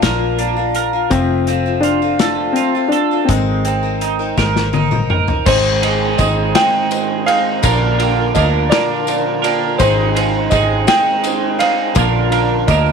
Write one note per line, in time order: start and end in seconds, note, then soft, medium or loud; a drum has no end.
0.00 1.07 A#1 medium
0.00 0.75 A#2 medium
0.00 0.39 A#2 medium
0.00 0.38 F3 medium
0.00 0.71 A#3 medium
0.00 1.11 A#3 medium
0.00 0.38 A#3 medium
0.00 0.37 D4 medium
0.00 0.39 D4 medium
0.00 0.40 F4 medium
0.00 0.74 A#4 medium
0.00 kick medium
0.00 snare loud
0.00 closed hi-hat medium
0.39 0.57 F3 medium
0.39 0.57 A#3 medium
0.39 0.56 D4 medium
0.39 0.55 F4 medium
0.39 closed hi-hat medium
0.57 0.94 A#3 soft
0.57 0.93 D4 medium
0.57 0.92 F4 medium
0.75 1.12 A#4 medium
0.75 closed hi-hat medium
0.93 1.12 A#3 soft
0.93 1.12 D4 soft
0.93 1.11 F4 soft
1.10 2.52 F1 medium
1.10 1.48 F2 medium
1.10 1.48 C3 medium
1.10 1.47 F3 medium
1.10 1.48 A3 medium
1.10 1.86 C4 medium
1.10 1.48 C4 medium
1.10 1.49 F4 medium
1.10 kick loud
1.10 closed hi-hat medium
1.47 1.66 F3 medium
1.47 1.66 A3 medium
1.47 1.65 C4 medium
1.47 1.65 F4 medium
1.47 closed hi-hat medium
1.66 2.03 F3 soft
1.66 2.03 A3 soft
1.66 2.01 C4 soft
1.66 2.01 F4 medium
1.81 2.57 D4 loud
1.81 2.55 F4 medium
1.81 closed hi-hat medium
2.02 2.20 F3 soft
2.02 2.21 A3 soft
2.02 2.21 C4 soft
2.02 2.20 F4 medium
2.19 2.57 F2 medium
2.19 2.57 C3 medium
2.19 2.55 F3 medium
2.19 2.56 A3 medium
2.19 2.57 C4 medium
2.19 2.57 F4 medium
2.19 2.91 A4 medium
2.19 snare loud
2.19 closed hi-hat medium
2.53 2.74 F3 medium
2.53 2.92 C4 medium
2.53 closed hi-hat medium
2.57 2.75 A3 medium
2.57 2.75 C4 medium
2.57 2.74 F4 medium
2.75 3.12 F3 soft
2.75 3.12 A3 soft
2.75 3.11 C4 soft
2.75 3.10 F4 medium
2.88 3.28 D4 medium
2.88 closed hi-hat medium
2.92 3.29 A4 medium
3.11 3.29 F3 soft
3.11 3.29 A3 soft
3.11 3.29 C4 soft
3.11 3.29 F4 soft
3.25 4.68 C4 medium
3.25 closed hi-hat medium
3.29 4.34 G#1 medium
3.29 3.64 G#3 medium
3.29 3.65 C4 medium
3.29 3.66 D#4 medium
3.29 3.66 A#4 medium
3.29 kick medium
3.65 3.84 G#3 medium
3.65 3.84 C4 medium
3.65 3.83 D#4 medium
3.65 3.82 A#4 medium
3.65 closed hi-hat medium
3.83 4.20 C4 soft
3.83 4.19 D#4 soft
3.83 4.18 A#4 soft
4.01 4.72 D#4 medium
4.01 closed hi-hat medium
4.19 4.37 C4 soft
4.19 4.38 D#4 soft
4.19 4.38 A#4 medium
4.37 5.42 G#1 medium
4.37 4.72 G#3 medium
4.37 4.73 C4 medium
4.37 4.74 D#4 medium
4.37 4.74 A#4 medium
4.37 kick medium
4.37 snare medium
4.56 snare medium
4.73 4.92 G#3 medium
4.73 4.92 C4 medium
4.73 4.91 D#4 medium
4.73 4.90 A#4 medium
4.73 high tom medium
4.91 5.29 C4 soft
4.91 5.28 D#4 medium
4.91 5.26 A#4 medium
4.91 mid tom medium
5.10 5.47 A#4 medium
5.10 mid tom medium
5.28 5.47 C4 soft
5.28 5.47 D#4 soft
5.28 5.46 A#4 medium
5.28 floor tom medium
5.46 6.15 G#1 medium
5.46 6.19 G#2 medium
5.46 6.19 D#3 medium
5.46 6.17 G#3 medium
5.46 7.61 C4 medium
5.46 6.18 C4 medium
5.46 5.75 D#4 medium
5.46 7.61 D#4 medium
5.46 6.18 D#4 medium
5.46 5.75 G#4 medium
5.46 7.61 G#4 medium
5.46 6.19 G#4 loud
5.46 6.21 C5 medium
5.46 7.61 C5 medium
5.46 5.76 C5 medium
5.46 5.76 D#5 medium
5.46 kick loud
5.46 crash loud
5.46 tambourine medium
5.82 6.17 G#3 medium
5.82 6.18 C4 medium
5.82 6.09 D#4 medium
5.82 6.19 D#4 medium
5.82 6.09 G#4 medium
5.82 6.20 G#4 medium
5.82 6.09 C5 medium
5.82 6.10 D#5 medium
5.82 ride medium
6.18 6.53 G#1 medium
6.18 6.55 G#3 medium
6.18 6.54 C4 medium
6.18 6.72 D#4 medium
6.18 6.54 D#4 medium
6.18 6.72 G#4 medium
6.18 6.54 G#4 medium
6.18 6.72 C5 medium
6.18 6.56 D#5 medium
6.18 6.72 D#5 medium
6.18 kick medium
6.18 ride medium
6.18 tambourine medium
6.55 7.28 G#2 medium
6.55 7.28 D#3 medium
6.55 7.28 G#3 medium
6.55 7.27 C4 medium
6.55 7.26 D#4 medium
6.55 7.25 G#4 medium
6.55 7.23 G5 loud
6.55 snare loud
6.55 ride loud
6.90 7.17 D#4 medium
6.90 7.18 G#4 medium
6.90 7.18 C5 medium
6.90 7.18 D#5 medium
6.90 ride medium
6.90 tambourine loud
7.26 7.63 G#3 soft
7.26 7.63 C4 soft
7.26 7.63 D#4 medium
7.26 7.63 D#4 soft
7.26 7.63 G#4 medium
7.26 7.64 C5 medium
7.26 8.38 F5 loud
7.26 7.63 F5 medium
7.26 ride medium
7.63 8.32 A#1 medium
7.63 8.35 A#2 medium
7.63 8.35 D3 medium
7.63 9.78 D3 medium
7.63 8.34 F3 medium
7.63 9.78 A#3 medium
7.63 8.35 A#3 medium
7.63 8.36 D4 medium
7.63 7.92 F4 medium
7.63 9.78 F4 medium
7.63 7.92 A#4 medium
7.63 9.78 A#4 medium
7.63 8.36 A#4 medium
7.63 7.92 D5 medium
7.63 7.93 F5 medium
7.63 kick loud
7.63 ride loud
7.63 tambourine loud
7.98 8.34 F3 medium
7.98 8.35 A#3 medium
7.98 8.36 D4 medium
7.98 8.26 F4 medium
7.98 8.37 A#4 medium
7.98 8.26 A#4 medium
7.98 8.26 D5 medium
7.98 8.26 G5 medium
7.98 ride medium
8.34 8.69 D2 medium
8.34 8.71 F3 medium
8.34 8.71 A#3 medium
8.34 8.70 D4 medium
8.34 8.88 F4 medium
8.34 8.89 A#4 medium
8.34 8.70 A#4 medium
8.34 8.43 D#5 medium
8.34 8.89 F5 medium
8.34 8.89 D6 medium
8.34 kick medium
8.34 ride medium
8.34 tambourine medium
8.70 9.44 A#2 medium
8.70 9.44 D3 medium
8.70 9.44 F3 medium
8.70 9.44 A#3 medium
8.70 9.43 D4 medium
8.70 9.42 A#4 medium
8.70 9.48 D5 medium
8.70 snare loud
8.70 ride loud
9.07 9.34 F4 medium
9.07 9.34 A#4 medium
9.07 9.35 D5 medium
9.07 9.35 F5 medium
9.07 ride medium
9.07 tambourine medium
9.43 9.80 F3 soft
9.43 9.80 A#3 soft
9.43 9.80 D4 medium
9.43 9.80 F4 medium
9.43 9.80 A#4 medium
9.43 9.80 D5 medium
9.43 9.81 G5 medium
9.43 ride medium
9.78 10.48 G#1 medium
9.78 10.52 G#2 medium
9.78 10.52 D#3 medium
9.78 10.49 G#3 medium
9.78 10.50 C4 medium
9.78 11.95 C4 medium
9.78 10.09 D#4 medium
9.78 10.51 D#4 medium
9.78 11.95 D#4 medium
9.78 10.09 G#4 medium
9.78 11.95 G#4 medium
9.78 10.52 G#4 medium
9.78 10.54 C5 medium
9.78 10.09 C5 medium
9.78 11.95 C5 medium
9.78 10.09 D#5 medium
9.78 kick loud
9.78 ride loud
9.78 tambourine medium
10.15 10.52 C4 medium
10.15 10.42 D#4 medium
10.15 10.53 D#4 medium
10.15 10.54 G#4 medium
10.15 10.42 G#4 medium
10.15 10.43 C5 medium
10.15 10.43 F5 medium
10.15 ride medium
10.50 10.85 G#1 medium
10.50 10.87 G#3 medium
10.50 10.87 C4 medium
10.50 11.04 D#4 medium
10.50 10.86 D#4 medium
10.50 11.05 G#4 medium
10.50 10.86 G#4 medium
10.50 11.05 C5 medium
10.50 10.88 D#5 medium
10.50 11.05 D#5 medium
10.50 kick medium
10.50 ride medium
10.50 tambourine medium
10.87 11.61 G#2 medium
10.87 11.60 D#3 medium
10.87 11.60 G#3 medium
10.87 11.59 C4 medium
10.87 11.58 D#4 medium
10.87 11.57 G#4 medium
10.87 11.62 G5 loud
10.87 snare loud
10.87 ride loud
11.23 11.50 D#4 medium
11.23 11.50 G#4 medium
11.23 11.51 C5 medium
11.23 11.51 D#5 medium
11.23 ride medium
11.23 tambourine medium
11.59 11.95 G#3 soft
11.59 11.95 C4 soft
11.59 11.96 D#4 medium
11.59 11.96 D#4 soft
11.59 11.95 G#4 medium
11.59 11.96 G#4 medium
11.59 11.96 C5 medium
11.59 11.94 D5 medium
11.59 12.71 F5 loud
11.59 ride medium
11.94 12.64 A#1 medium
11.94 12.68 A#2 medium
11.94 12.68 D3 medium
11.94 12.92 D3 medium
11.94 12.66 F3 medium
11.94 12.67 A#3 medium
11.94 12.92 A#3 medium
11.94 12.68 D4 medium
11.94 12.24 F4 medium
11.94 12.92 F4 medium
11.94 12.24 A#4 medium
11.94 12.68 A#4 medium
11.94 12.92 A#4 medium
11.94 12.25 D5 medium
11.94 12.25 F5 medium
11.94 kick loud
11.94 ride medium
11.94 tambourine loud
12.30 12.69 D4 medium
12.30 12.58 F4 medium
12.30 12.58 A#4 medium
12.30 12.69 A#4 medium
12.30 12.58 D5 medium
12.30 12.59 F5 medium
12.30 ride medium
12.34 12.66 F3 medium
12.34 12.67 A#3 medium
12.67 12.92 D2 medium
12.67 12.92 F3 medium
12.67 12.92 A#3 medium
12.67 12.92 D4 medium
12.67 12.92 F4 medium
12.67 12.92 A#4 medium
12.67 12.92 D#5 medium
12.67 12.92 F5 medium
12.67 12.92 D6 medium
12.67 kick medium
12.67 ride medium
12.67 tambourine loud
12.86 tambourine soft